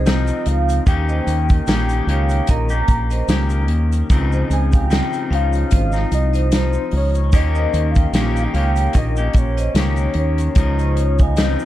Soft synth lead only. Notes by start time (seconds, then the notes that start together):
Already playing: D#5
0.47 F5
0.88 G5
1.42 G5
2.50 A#5
4.52 G#5
4.75 G5
5.34 F5
6.14 D#5
6.56 C5
6.97 C#5
7.35 D#5
7.91 F5
8.44 G5
8.98 D#5
9.38 C#5
10.18 C#5
11.22 D#5